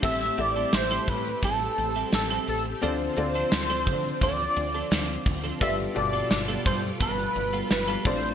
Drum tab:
CC |x---------------|----------------|----------------|
HH |-xxxxxxxxxxxxxox|xxxxxxxxxxxxxxox|xxxxxxxxxxxxxxox|
TB |----x-------x---|----x-------x---|----x-------x---|
SD |----o-------o---|----o-------o---|----o-------o---|
BD |o-----o-o-------|------o-o-----o-|o-----o-o-----o-|